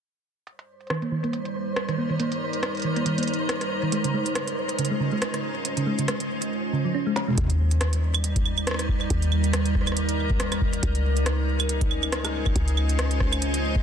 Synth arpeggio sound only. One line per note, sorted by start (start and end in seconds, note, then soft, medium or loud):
0.90 0.99 D#3 medium
1.02 1.09 A#3 medium
1.12 1.21 D#3 medium
1.24 1.33 A#3 medium
1.88 1.96 D#3 medium
1.98 2.07 A#3 medium
2.10 2.17 D#3 medium
2.20 2.31 A#3 medium
2.84 2.93 D#3 medium
2.96 3.04 A#3 medium
3.06 3.15 D#3 medium
3.18 3.27 A#3 medium
3.83 3.90 D#3 medium
3.92 4.01 G#3 medium
4.04 4.11 C#3 medium
4.14 4.25 G#3 medium
4.79 4.88 C#3 medium
4.91 4.98 G#3 medium
5.00 5.09 C#3 medium
5.12 5.21 G#3 medium
5.77 5.84 C#3 medium
5.87 5.96 G#3 medium
5.99 6.06 C#3 medium
6.08 6.20 G#3 medium
6.73 6.84 C#3 medium
6.85 6.89 F3 medium
6.94 7.03 C#4 loud
7.07 7.14 G#3 loud
7.28 7.32 G#3 medium